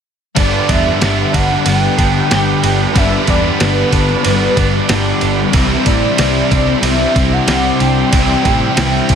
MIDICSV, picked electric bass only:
0, 0, Header, 1, 2, 480
1, 0, Start_track
1, 0, Key_signature, 1, "major"
1, 0, Tempo, 646552
1, 273, Time_signature, 4, 2, 24, 8
1, 6793, End_track
2, 0, Start_track
2, 0, Title_t, "Picked electric bass"
2, 0, Program_c, 0, 34
2, 273, Note_on_c, 0, 31, 86
2, 434, Note_off_c, 0, 31, 0
2, 512, Note_on_c, 0, 40, 90
2, 674, Note_off_c, 0, 40, 0
2, 755, Note_on_c, 0, 31, 71
2, 915, Note_off_c, 0, 31, 0
2, 995, Note_on_c, 0, 31, 82
2, 1156, Note_off_c, 0, 31, 0
2, 1233, Note_on_c, 0, 31, 89
2, 1394, Note_off_c, 0, 31, 0
2, 1472, Note_on_c, 0, 31, 91
2, 1634, Note_off_c, 0, 31, 0
2, 1719, Note_on_c, 0, 31, 90
2, 1878, Note_off_c, 0, 31, 0
2, 1955, Note_on_c, 0, 31, 93
2, 2115, Note_off_c, 0, 31, 0
2, 2197, Note_on_c, 0, 31, 88
2, 2357, Note_off_c, 0, 31, 0
2, 2434, Note_on_c, 0, 40, 98
2, 2595, Note_off_c, 0, 40, 0
2, 2680, Note_on_c, 0, 31, 83
2, 2839, Note_off_c, 0, 31, 0
2, 2912, Note_on_c, 0, 31, 95
2, 3074, Note_off_c, 0, 31, 0
2, 3160, Note_on_c, 0, 31, 90
2, 3319, Note_off_c, 0, 31, 0
2, 3392, Note_on_c, 0, 31, 80
2, 3553, Note_off_c, 0, 31, 0
2, 3632, Note_on_c, 0, 31, 90
2, 3794, Note_off_c, 0, 31, 0
2, 3878, Note_on_c, 0, 31, 83
2, 4038, Note_off_c, 0, 31, 0
2, 4111, Note_on_c, 0, 36, 96
2, 4273, Note_off_c, 0, 36, 0
2, 4352, Note_on_c, 0, 45, 89
2, 4514, Note_off_c, 0, 45, 0
2, 4596, Note_on_c, 0, 36, 74
2, 4756, Note_off_c, 0, 36, 0
2, 4835, Note_on_c, 0, 36, 86
2, 4996, Note_off_c, 0, 36, 0
2, 5066, Note_on_c, 0, 36, 85
2, 5230, Note_off_c, 0, 36, 0
2, 5313, Note_on_c, 0, 36, 85
2, 5475, Note_off_c, 0, 36, 0
2, 5548, Note_on_c, 0, 36, 89
2, 5711, Note_off_c, 0, 36, 0
2, 5794, Note_on_c, 0, 36, 83
2, 5955, Note_off_c, 0, 36, 0
2, 6032, Note_on_c, 0, 36, 98
2, 6194, Note_off_c, 0, 36, 0
2, 6275, Note_on_c, 0, 45, 93
2, 6436, Note_off_c, 0, 45, 0
2, 6512, Note_on_c, 0, 36, 83
2, 6674, Note_off_c, 0, 36, 0
2, 6752, Note_on_c, 0, 36, 84
2, 6793, Note_off_c, 0, 36, 0
2, 6793, End_track
0, 0, End_of_file